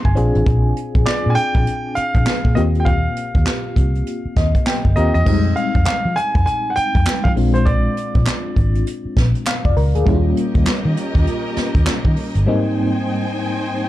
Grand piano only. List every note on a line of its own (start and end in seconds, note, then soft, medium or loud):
1.06 1.31 D5 medium
1.30 1.36 G#5 medium
1.35 1.98 G5 loud
1.95 2.58 F5 loud
2.55 2.61 D#5 medium
2.80 2.86 G5 medium
2.85 4.62 F5 medium
4.96 5.13 D#5 medium
5.14 5.58 D#5 medium
5.56 5.84 F5 medium
5.86 6.17 F5 medium
6.16 6.44 G#5 loud
6.46 6.71 G#5 loud
6.70 6.76 F#5 medium
6.76 7.26 G5 loud
7.24 7.31 F5 medium
7.54 7.66 C5 medium
7.65 8.82 D5 medium